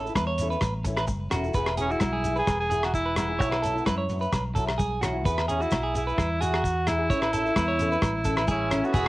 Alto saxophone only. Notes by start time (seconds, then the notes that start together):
1.81 C#4
1.92 E4
2.38 G#4
2.60 G#4
2.84 F#4
2.94 E4
3.17 E4
5.50 C#4
5.62 E4
5.96 E4
6.41 F#4
6.87 E4
8.50 E4
8.85 F#4